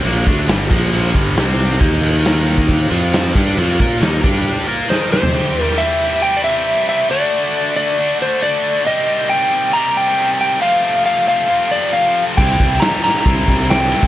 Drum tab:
CC |x-x-x-x-x-x-x-x-|x-x-x-x-x-x-x-x-|x-x-x-x---------|----------------|
RD |----------------|----------------|----------------|----------------|
SD |----o-------o--o|----o-------o-oo|----o-------o-o-|----------------|
FT |----------------|----------------|---------------o|----------------|
BD |--o---o---o-----|o------oo-----o-|--o---o---------|----------------|

CC |----------------|----------------|----------------|x---------------|
RD |----------------|----------------|----------------|--x-x-x-x-x-x-x-|
SD |----------------|----------------|----------------|----o-oo----o---|
FT |----------------|----------------|----------------|----------------|
BD |----------------|----------------|----------------|o-o-----o-o----o|